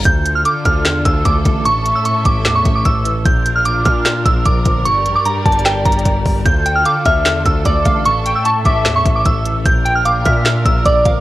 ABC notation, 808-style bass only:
X:1
M:4/4
L:1/16
Q:1/4=150
K:Dm
V:1 name="808-style bass" clef=bass
D,,4 z2 D,,2 E,,2 D,,2 D,,2 A,,,2- | A,,,3 z3 A,,,2 E,,2 A,,,2 A,,,4 | B,,,6 B,,4 B,,,2 B,,,2 G,,,2- | G,,,2 B,,, z3 G,,,4 G,,,2 G,,,2 G,,,2 |
D,,4 z2 D,,2 E,,2 D,,2 D,,2 A,,,2- | A,,,3 z3 A,,,2 E,,2 A,,,2 A,,,4 | B,,,6 B,,4 B,,,2 B,,,2 G,,,2 |]